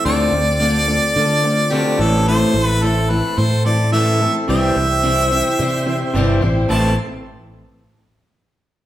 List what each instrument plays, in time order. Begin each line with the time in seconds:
0.05 fingered electric bass D2, twelve-string acoustic guitar D3 A3 C4 F4 A4, harmonica D5
0.32 fingered electric bass D2, clean electric guitar D3 A3, twelve-string acoustic guitar C4 F4 A4
0.60 twelve-string acoustic guitar D3 A3 C4 F4 A4
0.88 clean electric guitar D3 A3, twelve-string acoustic guitar C4 F4 A4
1.16 fingered electric bass D3, clean electric guitar D3, twelve-string acoustic guitar A3 C4 F4 A4
1.43 clean electric guitar D3 A3, twelve-string acoustic guitar C4 F4 A4
1.70 twelve-string acoustic guitar D3 A3 C4 F4 A4, harmonica G4
1.95 fingered electric bass A1, clean electric guitar A2, tonewheel organ A3 B3, twelve-string acoustic guitar A4
2.00 clean electric guitar E3, twelve-string acoustic guitar A3 C4 E4, tonewheel organ C4 D4, harmonica A4
2.06 tonewheel organ E4 F4
2.11 tonewheel organ G4 A4
2.17 tonewheel organ B4 C5
2.22 tonewheel organ E4 A4 C5 D5
2.26 twelve-string acoustic guitar A2 E3 A3 C4 E4 A4, harmonica C5
2.54 fingered electric bass A1, clean electric guitar A2 E3, twelve-string acoustic guitar A3 C4 E4 A4
2.65 harmonica B4
2.82 twelve-string acoustic guitar A2 E3 A3 C4 E4 A4, harmonica A4
3.10 clean electric guitar A2 E3, twelve-string acoustic guitar A3 C4 E4 A4, harmonica B4
3.37 fingered electric bass A2, clean electric guitar A2 E3, twelve-string acoustic guitar A3 C4 E4 A4, harmonica C5
3.64 clean electric guitar A2 E3, twelve-string acoustic guitar A3 C4 E4 A4, harmonica D5
3.93 twelve-string acoustic guitar A2 E3 A3 C4 E4 A4, harmonica E5
4.21 clean electric guitar A2 E3, twelve-string acoustic guitar A3 C4 E4 A4
4.48 fingered electric bass C2, twelve-string acoustic guitar C3 E3 G3 C4 E4 C5, tonewheel organ E4 G4 C5, harmonica E5
4.76 fingered electric bass C2, clean electric guitar C3 E3, twelve-string acoustic guitar G3 C4 E4 C5
5.03 twelve-string acoustic guitar C3 E3 G3 C4 E4 C5
5.31 clean electric guitar C3 E3, twelve-string acoustic guitar G3 C4 E4 C5
5.59 clean electric guitar C3 E3, fingered electric bass C3, twelve-string acoustic guitar G3 C4 E4 C5
5.86 clean electric guitar C3 E3, twelve-string acoustic guitar G3 C4 E4 C5
6.14 fingered electric bass G1, twelve-string acoustic guitar C3 E3 G3 C4 E4 C5
6.41 fingered electric bass A1, clean electric guitar C3 E3, twelve-string acoustic guitar G3 C4 E4 C5
6.68 fingered electric bass A1, twelve-string acoustic guitar A2 E3 A3 C4 E4 C5, tonewheel organ E4 A4 C5, harmonica A5